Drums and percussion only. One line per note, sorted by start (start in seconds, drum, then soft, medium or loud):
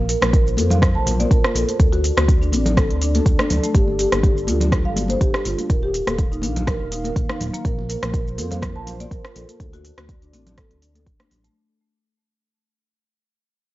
0.09 open hi-hat medium
0.09 shaker loud
0.21 cross-stick loud
0.21 closed hi-hat soft
0.21 high conga loud
0.21 shaker soft
0.33 kick loud
0.33 closed hi-hat medium
0.33 shaker medium
0.47 shaker soft
0.57 open hi-hat medium
0.57 high conga loud
0.57 shaker loud
0.70 closed hi-hat soft
0.70 muted conga soft
0.70 low conga loud
0.70 shaker soft
0.82 kick loud
0.82 cross-stick medium
0.82 closed hi-hat medium
0.82 low conga medium
0.82 shaker medium
1.07 open hi-hat medium
1.07 muted conga soft
1.07 high conga loud
1.07 low conga medium
1.07 shaker loud
1.20 closed hi-hat soft
1.20 high conga loud
1.20 shaker soft
1.31 kick loud
1.31 closed hi-hat medium
1.31 shaker medium
1.44 cross-stick medium
1.44 shaker soft
1.55 open hi-hat medium
1.55 muted conga medium
1.55 shaker loud
1.69 closed hi-hat soft
1.69 high conga medium
1.69 shaker soft
1.80 kick loud
1.80 closed hi-hat medium
1.80 shaker medium
1.93 closed hi-hat soft
1.93 muted conga medium
2.04 open hi-hat medium
2.04 shaker loud
2.17 cross-stick loud
2.17 closed hi-hat soft
2.17 high conga loud
2.17 shaker soft
2.28 kick loud
2.28 closed hi-hat medium
2.28 muted conga soft
2.28 shaker medium
2.42 shaker soft
2.52 open hi-hat medium
2.52 high conga loud
2.52 shaker loud
2.66 closed hi-hat soft
2.66 muted conga medium
2.66 low conga loud
2.66 shaker soft
2.77 kick loud
2.77 cross-stick medium
2.77 closed hi-hat medium
2.77 high conga medium
2.77 shaker medium
2.91 closed hi-hat soft
3.02 open hi-hat medium
3.02 muted conga soft
3.02 shaker loud
3.15 closed hi-hat soft
3.15 high conga loud
3.15 shaker soft
3.26 kick loud
3.26 closed hi-hat medium
3.26 shaker medium
3.39 cross-stick medium
3.39 high conga loud
3.39 shaker soft
3.50 open hi-hat medium
3.50 muted conga medium
3.50 low conga loud
3.50 shaker loud
3.64 closed hi-hat soft
3.64 shaker soft
3.75 kick loud
3.75 closed hi-hat medium
3.75 shaker medium
3.88 muted conga medium
3.99 open hi-hat medium
3.99 shaker loud
4.12 cross-stick medium
4.12 closed hi-hat soft
4.12 high conga loud
4.12 shaker soft
4.23 kick loud
4.23 closed hi-hat medium
4.23 muted conga soft
4.23 shaker medium
4.37 shaker soft
4.47 open hi-hat medium
4.47 high conga loud
4.47 shaker loud
4.61 closed hi-hat soft
4.61 muted conga soft
4.61 low conga loud
4.61 shaker soft
4.72 kick loud
4.72 cross-stick medium
4.72 closed hi-hat medium
4.72 low conga medium
4.72 shaker medium
4.96 open hi-hat medium
4.96 muted conga soft
4.96 high conga medium
4.96 low conga medium
4.96 shaker medium
5.08 closed hi-hat soft
5.08 high conga loud
5.08 shaker soft
5.21 kick loud
5.21 closed hi-hat medium
5.21 shaker medium
5.34 cross-stick medium
5.34 shaker soft
5.45 open hi-hat medium
5.45 muted conga soft
5.45 shaker medium
5.58 closed hi-hat soft
5.58 high conga medium
5.58 shaker soft
5.70 kick loud
5.70 closed hi-hat medium
5.70 shaker medium
5.83 muted conga medium
5.94 open hi-hat medium
5.94 shaker medium
6.07 cross-stick medium
6.07 closed hi-hat soft
6.07 high conga loud
6.07 shaker soft
6.19 kick loud
6.19 closed hi-hat medium
6.19 shaker soft
6.32 shaker soft
6.42 open hi-hat medium
6.42 high conga loud
6.42 shaker medium
6.56 closed hi-hat soft
6.56 muted conga medium
6.56 low conga loud
6.56 shaker soft
6.67 kick loud
6.67 cross-stick medium
6.67 closed hi-hat medium
6.67 high conga medium
6.67 shaker medium
6.92 open hi-hat medium
6.92 muted conga soft
6.92 shaker medium
7.04 closed hi-hat soft
7.04 high conga loud
7.04 shaker soft
7.16 kick loud
7.16 closed hi-hat medium
7.16 shaker soft
7.29 cross-stick medium
7.29 high conga loud
7.29 shaker soft
7.40 open hi-hat medium
7.40 muted conga soft
7.40 low conga medium
7.40 shaker medium
7.54 closed hi-hat soft
7.54 shaker soft
7.65 kick loud
7.65 closed hi-hat medium
7.65 shaker medium
7.79 muted conga medium
7.90 open hi-hat medium
7.90 shaker medium
8.03 cross-stick medium
8.03 closed hi-hat soft
8.03 high conga medium
8.03 shaker soft
8.13 kick loud
8.13 closed hi-hat medium
8.13 muted conga soft
8.13 shaker medium
8.28 shaker soft
8.38 open hi-hat medium
8.38 high conga medium
8.38 shaker medium
8.51 closed hi-hat soft
8.51 muted conga medium
8.51 low conga loud
8.51 shaker soft
8.62 kick loud
8.62 cross-stick medium
8.62 closed hi-hat medium
8.62 low conga medium
8.62 shaker medium
8.87 open hi-hat loud
8.87 muted conga soft
8.87 high conga medium
8.87 low conga medium
8.87 shaker medium
9.00 closed hi-hat soft
9.00 high conga loud
9.00 shaker soft
9.11 kick loud
9.11 closed hi-hat medium
9.11 shaker medium
9.25 cross-stick medium
9.25 shaker soft
9.36 open hi-hat medium
9.36 muted conga soft
9.36 shaker medium
9.49 closed hi-hat soft
9.49 high conga medium
9.49 shaker soft
9.60 kick loud
9.60 closed hi-hat medium
9.60 shaker medium
9.73 closed hi-hat soft
9.73 muted conga medium
9.73 shaker soft
9.85 open hi-hat loud
9.85 shaker medium
9.98 cross-stick loud
9.98 closed hi-hat soft
9.98 high conga medium
9.98 shaker soft
10.09 kick loud
10.09 closed hi-hat medium
10.09 muted conga soft
10.09 shaker medium
10.22 closed hi-hat soft
10.22 shaker soft
10.33 open hi-hat medium
10.33 high conga loud
10.33 shaker medium
10.47 closed hi-hat soft
10.47 muted conga medium
10.47 low conga loud
10.47 shaker soft
10.57 kick loud
10.57 cross-stick medium
10.57 closed hi-hat medium
10.57 high conga medium
10.57 shaker medium
10.71 closed hi-hat soft
10.82 open hi-hat medium
10.82 muted conga soft
10.82 shaker medium
10.95 closed hi-hat soft
10.95 high conga loud
10.95 shaker soft
11.06 kick loud
11.06 closed hi-hat medium
11.06 shaker soft
11.20 cross-stick medium
11.20 closed hi-hat soft
11.20 high conga loud
11.20 shaker soft
11.31 open hi-hat medium
11.31 muted conga medium
11.31 low conga medium
11.31 shaker medium
11.44 closed hi-hat soft
11.44 shaker soft